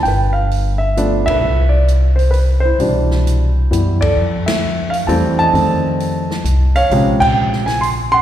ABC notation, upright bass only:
X:1
M:3/4
L:1/8
Q:"Swing" 1/4=131
K:C
V:1 name="Upright bass" clef=bass
G,,,4- G,,, B,,, | C,,6 | C,,4 ^F,,2 | [K:Bblyd] F,,4 E,,2 |
F,,4 C,,2 | B,,,6 |]